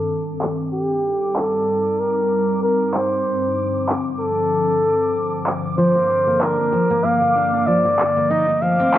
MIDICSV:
0, 0, Header, 1, 6, 480
1, 0, Start_track
1, 0, Key_signature, -2, "minor"
1, 0, Tempo, 631579
1, 553, Time_signature, 4, 2, 24, 8
1, 6827, End_track
2, 0, Start_track
2, 0, Title_t, "Synth texture"
2, 0, Program_c, 0, 99
2, 0, Note_on_c, 0, 86, 79
2, 6827, Note_off_c, 0, 86, 0
2, 6827, End_track
3, 0, Start_track
3, 0, Title_t, "Flugelhorn"
3, 0, Program_c, 1, 56
3, 0, Note_on_c, 1, 69, 96
3, 281, Note_off_c, 1, 69, 0
3, 552, Note_on_c, 1, 67, 75
3, 1036, Note_on_c, 1, 69, 78
3, 1047, Note_off_c, 1, 67, 0
3, 1519, Note_on_c, 1, 70, 79
3, 1530, Note_off_c, 1, 69, 0
3, 1994, Note_off_c, 1, 70, 0
3, 1999, Note_on_c, 1, 70, 84
3, 2237, Note_on_c, 1, 72, 82
3, 2249, Note_off_c, 1, 70, 0
3, 2955, Note_off_c, 1, 72, 0
3, 3193, Note_on_c, 1, 69, 99
3, 4123, Note_off_c, 1, 69, 0
3, 4398, Note_on_c, 1, 72, 87
3, 4878, Note_on_c, 1, 70, 86
3, 4889, Note_off_c, 1, 72, 0
3, 5354, Note_on_c, 1, 77, 94
3, 5366, Note_off_c, 1, 70, 0
3, 5831, Note_on_c, 1, 74, 89
3, 5843, Note_off_c, 1, 77, 0
3, 6313, Note_on_c, 1, 75, 91
3, 6324, Note_off_c, 1, 74, 0
3, 6554, Note_on_c, 1, 77, 87
3, 6565, Note_off_c, 1, 75, 0
3, 6827, Note_off_c, 1, 77, 0
3, 6827, End_track
4, 0, Start_track
4, 0, Title_t, "Steel-string acoustic guitar"
4, 0, Program_c, 2, 25
4, 4392, Note_on_c, 2, 53, 83
4, 4513, Note_off_c, 2, 53, 0
4, 4525, Note_on_c, 2, 58, 79
4, 4621, Note_off_c, 2, 58, 0
4, 4632, Note_on_c, 2, 58, 62
4, 4757, Note_off_c, 2, 58, 0
4, 4766, Note_on_c, 2, 58, 62
4, 4862, Note_off_c, 2, 58, 0
4, 4872, Note_on_c, 2, 62, 90
4, 4994, Note_off_c, 2, 62, 0
4, 5006, Note_on_c, 2, 62, 62
4, 5102, Note_off_c, 2, 62, 0
4, 5110, Note_on_c, 2, 53, 82
4, 5233, Note_off_c, 2, 53, 0
4, 5245, Note_on_c, 2, 58, 82
4, 5342, Note_off_c, 2, 58, 0
4, 5351, Note_on_c, 2, 58, 71
4, 5477, Note_off_c, 2, 58, 0
4, 5486, Note_on_c, 2, 58, 64
4, 5582, Note_off_c, 2, 58, 0
4, 5592, Note_on_c, 2, 62, 90
4, 5714, Note_off_c, 2, 62, 0
4, 5727, Note_on_c, 2, 62, 60
4, 5822, Note_off_c, 2, 62, 0
4, 5831, Note_on_c, 2, 53, 80
4, 5953, Note_off_c, 2, 53, 0
4, 5966, Note_on_c, 2, 58, 82
4, 6062, Note_off_c, 2, 58, 0
4, 6071, Note_on_c, 2, 58, 60
4, 6196, Note_off_c, 2, 58, 0
4, 6205, Note_on_c, 2, 58, 54
4, 6301, Note_off_c, 2, 58, 0
4, 6311, Note_on_c, 2, 63, 83
4, 6433, Note_off_c, 2, 63, 0
4, 6550, Note_on_c, 2, 53, 81
4, 6673, Note_off_c, 2, 53, 0
4, 6685, Note_on_c, 2, 60, 89
4, 6781, Note_off_c, 2, 60, 0
4, 6791, Note_on_c, 2, 60, 77
4, 6827, Note_off_c, 2, 60, 0
4, 6827, End_track
5, 0, Start_track
5, 0, Title_t, "Ambient pad"
5, 0, Program_c, 3, 92
5, 0, Note_on_c, 3, 43, 71
5, 0, Note_on_c, 3, 51, 65
5, 0, Note_on_c, 3, 60, 65
5, 0, Note_on_c, 3, 69, 74
5, 533, Note_off_c, 3, 51, 0
5, 533, Note_off_c, 3, 69, 0
5, 554, Note_on_c, 3, 55, 65
5, 554, Note_on_c, 3, 63, 82
5, 2444, Note_off_c, 3, 43, 0
5, 2455, Note_off_c, 3, 55, 0
5, 2455, Note_off_c, 3, 63, 0
5, 2476, Note_on_c, 3, 53, 63
5, 2477, Note_on_c, 3, 43, 74
5, 2477, Note_on_c, 3, 50, 62
5, 4362, Note_off_c, 3, 60, 0
5, 4392, Note_on_c, 3, 58, 85
5, 6284, Note_off_c, 3, 53, 0
5, 6285, Note_off_c, 3, 50, 0
5, 6293, Note_off_c, 3, 58, 0
5, 6827, Note_off_c, 3, 43, 0
5, 6827, End_track
6, 0, Start_track
6, 0, Title_t, "Drums"
6, 81, Note_on_c, 9, 69, 35
6, 157, Note_off_c, 9, 69, 0
6, 216, Note_on_c, 9, 69, 19
6, 292, Note_off_c, 9, 69, 0
6, 315, Note_on_c, 9, 39, 71
6, 320, Note_on_c, 9, 69, 71
6, 391, Note_off_c, 9, 39, 0
6, 396, Note_off_c, 9, 69, 0
6, 454, Note_on_c, 9, 69, 31
6, 530, Note_off_c, 9, 69, 0
6, 560, Note_on_c, 9, 69, 37
6, 636, Note_off_c, 9, 69, 0
6, 695, Note_on_c, 9, 69, 19
6, 771, Note_off_c, 9, 69, 0
6, 800, Note_on_c, 9, 69, 64
6, 876, Note_off_c, 9, 69, 0
6, 935, Note_on_c, 9, 69, 28
6, 1011, Note_off_c, 9, 69, 0
6, 1035, Note_on_c, 9, 39, 66
6, 1111, Note_off_c, 9, 39, 0
6, 1280, Note_on_c, 9, 69, 70
6, 1356, Note_off_c, 9, 69, 0
6, 1414, Note_on_c, 9, 69, 28
6, 1490, Note_off_c, 9, 69, 0
6, 1521, Note_on_c, 9, 69, 39
6, 1597, Note_off_c, 9, 69, 0
6, 1655, Note_on_c, 9, 69, 19
6, 1731, Note_off_c, 9, 69, 0
6, 1760, Note_on_c, 9, 69, 65
6, 1836, Note_off_c, 9, 69, 0
6, 1896, Note_on_c, 9, 69, 29
6, 1972, Note_off_c, 9, 69, 0
6, 2001, Note_on_c, 9, 69, 37
6, 2077, Note_off_c, 9, 69, 0
6, 2135, Note_on_c, 9, 69, 20
6, 2211, Note_off_c, 9, 69, 0
6, 2236, Note_on_c, 9, 39, 64
6, 2241, Note_on_c, 9, 69, 67
6, 2312, Note_off_c, 9, 39, 0
6, 2317, Note_off_c, 9, 69, 0
6, 2374, Note_on_c, 9, 69, 28
6, 2450, Note_off_c, 9, 69, 0
6, 2480, Note_on_c, 9, 69, 39
6, 2556, Note_off_c, 9, 69, 0
6, 2616, Note_on_c, 9, 69, 20
6, 2692, Note_off_c, 9, 69, 0
6, 2722, Note_on_c, 9, 69, 64
6, 2798, Note_off_c, 9, 69, 0
6, 2856, Note_on_c, 9, 69, 29
6, 2932, Note_off_c, 9, 69, 0
6, 2957, Note_on_c, 9, 39, 64
6, 2962, Note_on_c, 9, 69, 40
6, 3033, Note_off_c, 9, 39, 0
6, 3038, Note_off_c, 9, 69, 0
6, 3096, Note_on_c, 9, 69, 21
6, 3172, Note_off_c, 9, 69, 0
6, 3200, Note_on_c, 9, 69, 67
6, 3276, Note_off_c, 9, 69, 0
6, 3334, Note_on_c, 9, 69, 30
6, 3410, Note_off_c, 9, 69, 0
6, 3440, Note_on_c, 9, 69, 38
6, 3516, Note_off_c, 9, 69, 0
6, 3678, Note_on_c, 9, 69, 66
6, 3754, Note_off_c, 9, 69, 0
6, 3815, Note_on_c, 9, 69, 28
6, 3891, Note_off_c, 9, 69, 0
6, 3921, Note_on_c, 9, 69, 37
6, 3965, Note_off_c, 9, 69, 0
6, 3965, Note_on_c, 9, 69, 28
6, 3999, Note_off_c, 9, 69, 0
6, 3999, Note_on_c, 9, 69, 26
6, 4053, Note_off_c, 9, 69, 0
6, 4053, Note_on_c, 9, 69, 22
6, 4079, Note_off_c, 9, 69, 0
6, 4079, Note_on_c, 9, 69, 17
6, 4125, Note_off_c, 9, 69, 0
6, 4125, Note_on_c, 9, 69, 14
6, 4154, Note_on_c, 9, 39, 68
6, 4159, Note_off_c, 9, 69, 0
6, 4159, Note_on_c, 9, 69, 67
6, 4230, Note_off_c, 9, 39, 0
6, 4235, Note_off_c, 9, 69, 0
6, 4295, Note_on_c, 9, 69, 30
6, 4371, Note_off_c, 9, 69, 0
6, 4400, Note_on_c, 9, 69, 36
6, 4476, Note_off_c, 9, 69, 0
6, 4535, Note_on_c, 9, 69, 19
6, 4611, Note_off_c, 9, 69, 0
6, 4639, Note_on_c, 9, 69, 63
6, 4715, Note_off_c, 9, 69, 0
6, 4774, Note_on_c, 9, 69, 27
6, 4850, Note_off_c, 9, 69, 0
6, 4875, Note_on_c, 9, 39, 62
6, 4880, Note_on_c, 9, 69, 39
6, 4951, Note_off_c, 9, 39, 0
6, 4956, Note_off_c, 9, 69, 0
6, 5014, Note_on_c, 9, 69, 20
6, 5090, Note_off_c, 9, 69, 0
6, 5120, Note_on_c, 9, 69, 68
6, 5196, Note_off_c, 9, 69, 0
6, 5254, Note_on_c, 9, 69, 29
6, 5330, Note_off_c, 9, 69, 0
6, 5361, Note_on_c, 9, 69, 36
6, 5437, Note_off_c, 9, 69, 0
6, 5495, Note_on_c, 9, 69, 17
6, 5571, Note_off_c, 9, 69, 0
6, 5600, Note_on_c, 9, 69, 68
6, 5676, Note_off_c, 9, 69, 0
6, 5734, Note_on_c, 9, 69, 26
6, 5810, Note_off_c, 9, 69, 0
6, 5840, Note_on_c, 9, 69, 37
6, 5916, Note_off_c, 9, 69, 0
6, 5975, Note_on_c, 9, 69, 19
6, 6051, Note_off_c, 9, 69, 0
6, 6075, Note_on_c, 9, 39, 66
6, 6080, Note_on_c, 9, 69, 66
6, 6151, Note_off_c, 9, 39, 0
6, 6156, Note_off_c, 9, 69, 0
6, 6214, Note_on_c, 9, 69, 31
6, 6290, Note_off_c, 9, 69, 0
6, 6320, Note_on_c, 9, 69, 36
6, 6396, Note_off_c, 9, 69, 0
6, 6454, Note_on_c, 9, 69, 19
6, 6530, Note_off_c, 9, 69, 0
6, 6559, Note_on_c, 9, 69, 59
6, 6635, Note_off_c, 9, 69, 0
6, 6693, Note_on_c, 9, 69, 27
6, 6769, Note_off_c, 9, 69, 0
6, 6794, Note_on_c, 9, 39, 67
6, 6799, Note_on_c, 9, 69, 37
6, 6827, Note_off_c, 9, 39, 0
6, 6827, Note_off_c, 9, 69, 0
6, 6827, End_track
0, 0, End_of_file